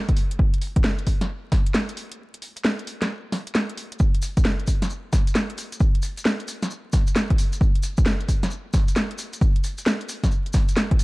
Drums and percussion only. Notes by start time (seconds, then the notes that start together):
0.09 kick, closed hi-hat
0.17 open hi-hat
0.31 closed hi-hat
0.39 kick
0.54 closed hi-hat
0.62 open hi-hat
0.76 kick, closed hi-hat
0.84 snare
0.99 closed hi-hat
1.07 kick, open hi-hat
1.21 snare, closed hi-hat
1.52 kick, snare, open hi-hat
1.66 closed hi-hat
1.74 snare
1.89 closed hi-hat
1.97 open hi-hat
2.12 closed hi-hat
2.34 closed hi-hat
2.42 open hi-hat
2.57 closed hi-hat
2.65 snare
2.79 closed hi-hat
2.87 open hi-hat
3.02 snare, closed hi-hat
3.32 snare, open hi-hat
3.47 closed hi-hat
3.55 snare
3.69 closed hi-hat
3.77 open hi-hat
3.92 closed hi-hat
3.99 kick, maracas
4.15 closed hi-hat
4.22 open hi-hat, maracas
4.37 kick, closed hi-hat, maracas
4.45 snare, maracas
4.60 closed hi-hat
4.67 kick, open hi-hat, maracas
4.82 snare, closed hi-hat, maracas
4.90 maracas
5.13 kick, snare, open hi-hat, maracas
5.27 closed hi-hat, maracas
5.35 snare, maracas
5.50 closed hi-hat
5.58 open hi-hat, maracas
5.72 closed hi-hat, maracas
5.80 kick, maracas
5.95 closed hi-hat
6.02 open hi-hat, maracas
6.17 closed hi-hat, maracas
6.25 snare, maracas
6.40 closed hi-hat
6.48 open hi-hat, maracas
6.63 snare, closed hi-hat, maracas
6.71 maracas
6.93 kick, snare, open hi-hat, maracas
7.07 closed hi-hat, maracas
7.16 snare, maracas
7.30 kick, closed hi-hat
7.38 open hi-hat, maracas
7.53 closed hi-hat, maracas
7.61 kick, maracas
7.75 closed hi-hat
7.83 open hi-hat, maracas
7.97 kick, closed hi-hat, maracas
8.06 snare, maracas
8.21 closed hi-hat
8.29 kick, open hi-hat, maracas
8.43 snare, closed hi-hat, maracas
8.51 maracas
8.74 kick, snare, open hi-hat, maracas
8.88 closed hi-hat, maracas
8.96 snare, maracas
9.11 closed hi-hat
9.18 open hi-hat, maracas
9.33 closed hi-hat, maracas
9.41 kick, maracas
9.56 closed hi-hat
9.64 open hi-hat, maracas
9.78 closed hi-hat, maracas
9.86 snare, maracas
10.01 closed hi-hat
10.09 open hi-hat, maracas
10.24 kick, snare, closed hi-hat, maracas
10.31 maracas
10.46 closed hi-hat
10.53 kick, snare, open hi-hat, maracas
10.69 closed hi-hat, maracas
10.77 snare, maracas
10.91 kick, closed hi-hat
10.99 open hi-hat, maracas